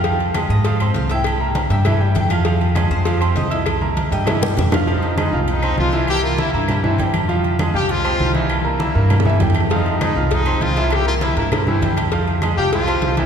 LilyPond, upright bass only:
\new Staff \with { instrumentName = "Upright bass" } { \clef bass \time 4/4 \key f \minor \tempo 4 = 199 f,4. aes,4. c,4~ | c,4. g,4. f,4~ | f,4. f,4. c,4~ | c,4. g,4. f,4~ |
f,4. c,4. c,4~ | c,4. g,4. f,4~ | f,4. c,4. c,4~ | c,4. g,4. f,4~ |
f,4. c,4. c,4~ | c,4. g,4. f,4~ | f,4. c,4. c,4 | }